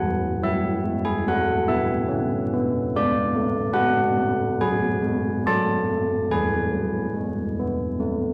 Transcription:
church bells
Already playing: A4 F#5
0.02 E3
0.43 F#3 E5
0.84 G#3
1.05 G#5
1.27 A3 B4 F#5
1.68 B3 E5
2.08 C#4
2.53 B3
2.95 G#3 D5
3.35 A3
3.73 G#3 B4 F#5
4.17 A3
4.61 F#3 G#5
5.02 G#3
5.46 F#3 D5 A5
5.89 A3
6.31 E3 B4 G#5
6.71 F#3
7.14 G#3
7.59 B3
8.00 A3

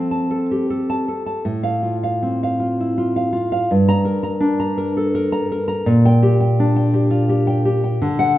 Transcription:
nylon-string guitar
Already playing: F3 C4 A4
0.11 A5
0.31 A4
0.51 G4
0.70 A4
0.90 A5
1.08 A4
1.26 A5
1.45 A2
1.63 F5
1.83 F4
2.03 F5
2.23 C4
2.43 F5
2.60 F4
2.80 E4
2.98 F4
3.16 F5
3.33 F4
3.52 F5
3.71 G2
3.88 A#5
4.05 A#4
4.23 A#5
4.40 D4
4.60 A#5
4.78 A#4
4.97 A4
5.15 A#4
5.32 A#5
5.52 A#4
5.68 A#5
5.86 A#2
6.05 G5
6.23 G4
6.40 G5
6.60 D4
6.76 G5
6.94 G4
7.11 F4
7.29 G4
7.47 G5
7.65 G4
7.84 G5
8.02 D3
8.19 F#5

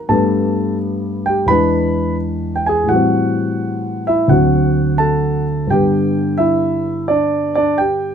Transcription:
grand piano
0.09 G2 G3 A3 B3 A4 A5
1.26 G4 G5
1.46 E2 E3 G#3 B4 B5
1.51 D4
2.56 G5
2.66 G#4 G#5
2.83 A2 E3
2.89 G3 F#4 F#5
2.94 C4
4.07 E4 E5
4.28 D2 D3 F#3 C4 F#4 F#5
4.98 A4 A5
5.67 G2 D3 G3 G5
5.72 B3 G4
6.38 E4 E5
7.08 D4 D5
7.55 D4 D5
7.78 G4 G5

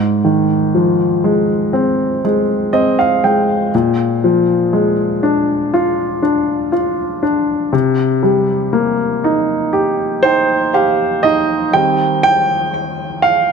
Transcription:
grand piano
Already playing: G#2
0.25 D#3
0.75 F3
1.24 G#3
1.73 C4
2.25 G#3
2.73 C4 D#5
2.99 F5
3.24 G#3 G5
3.75 A#2
4.24 F3
4.73 G#3
5.23 D4
5.74 F4
6.23 D4
6.72 F4
7.23 D4
7.73 C3
8.23 G3
8.73 A#3
9.24 D#4
9.73 G4
10.23 D#4 C5 G5
10.74 G4 F5
11.23 D#4 D#5
11.73 D#3 G3 C4 G5
12.23 G5
13.22 F5

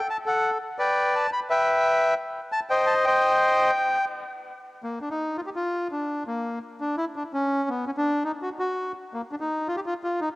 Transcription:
bandoneon
0.10 A5
0.26 A4 F#5
0.78 B4 D5 G5
1.16 A5
1.33 B5
1.50 B4 E5 G5
2.52 A5
2.70 C5 D#5 G5
2.86 A5
3.05 C5 D#5 G5
4.83 A#3
5.01 D4
5.11 D#4
5.37 F4
5.46 G4
5.56 F4
5.92 D4
6.27 A#3
6.81 D4
6.98 E4
7.16 D4
7.34 C#4
7.69 B3
7.87 C#4
7.97 D4
8.24 D#4
8.42 F#4
8.59 F#4
9.14 A#3
9.32 D4
9.40 D#4
9.68 F4
9.76 G4
9.86 F4
10.03 F4
10.21 D#4

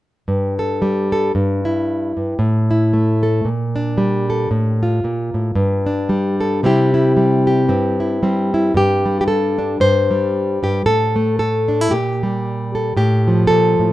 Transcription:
nylon-string guitar
0.28 G2
0.59 A4
0.82 G3
1.12 A4
1.35 G2
1.65 E4
2.17 G2
2.39 A2
2.71 E4
2.93 A3
3.23 A4
3.45 A#2
3.76 D4
3.98 G3
4.30 A4
4.51 A2
4.83 F4
5.04 A#2
5.34 A2
5.55 G2
5.86 D4
6.09 G3
6.41 A4
6.63 C3 G3 C4 E4 G4
6.94 E4
7.17 G3
7.47 G4
7.68 G2 C4
8.00 E4
8.23 G3 C4
8.54 E4
8.74 G2 G4
9.05 G3
9.21 G4
9.28 A4
9.58 D4
9.80 G2 C5
10.11 G3
10.63 G2 G4
10.86 A2 A4
11.16 A3
11.39 A4
11.68 D4
11.81 E4
11.91 A#2 G4
12.23 G3
12.75 A4
12.97 A2 G4
13.28 F3
13.47 A#2 A4
13.79 A2

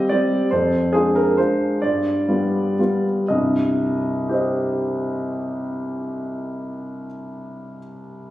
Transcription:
grand piano
0.09 G3 C4 G4 D5
0.51 F2 C5
0.93 G#3 D4 F4 G#4
1.15 A#4
1.37 G#3 D4 F4 C5
1.82 G2 D5
2.28 G3 B3 F4
2.79 G3 B3 F4
3.28 C2 G2 D#5
4.29 G4 C5
4.34 D#5

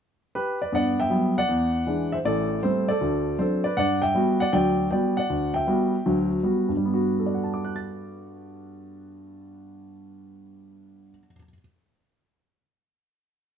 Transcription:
grand piano
0.35 G4 B4
0.62 B4 D5
0.72 G2 B3 D5 F#5
1.00 E5 G5
1.10 F#3 G3 B3
1.38 D5 F#5
1.49 E2
1.87 E3 G#3 D4
2.12 C5 E5
2.25 A1 A2 A4 D5
2.63 G3 A3 C4 A4 C5
2.88 A4 D5
3.01 D2
3.39 F#3 C4 D4 A4 C5
3.64 B4 D5
3.77 G2 D5 F#5
4.02 E5 G5
4.15 G3 B3 F#4
4.40 D5 F#5
4.53 D2 F#3 D5 G5
4.91 G3 B3 F#4 D5 G5
5.17 D5 F#5
5.30 D2
5.54 E5 G5
5.67 G3 B3 F#4
6.06 D2 F#3
6.43 G3 B3 F#4
6.69 G2
6.77 G3
6.85 B3
6.94 F#4
7.19 A4
7.26 D5
7.35 F#5
7.44 A5
7.54 D6
7.64 F#6
7.76 A6

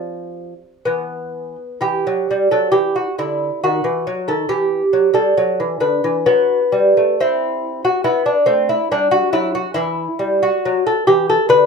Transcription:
lute
Already playing: F3 C4
0.85 E3 B3
1.81 E3 G4
2.07 F#3
2.31 G3
2.51 F#3 A4
2.72 E3 G4
2.96 F#4
3.18 D3 E4
3.64 D#3 F#4
3.84 E3
4.07 F#3
4.28 D#3 A4
4.49 E3 G4
4.93 F#3
5.14 G3 A4
5.37 F#3
5.60 E3
5.80 D3 B4
6.04 E3
6.26 F#3 B3
6.72 G3
6.97 A3
7.20 C4 E4
7.85 F#4
8.04 B3 E4
8.26 D4
8.46 A3 C4
8.69 E4
8.91 G3 D4
9.11 F#4
9.33 F#3 E4
9.55 F#4
9.74 E3 E4
10.19 G3
10.43 F#4
10.65 F#3
10.87 A4
11.07 E3 G4
11.29 A4
11.49 D3 B4

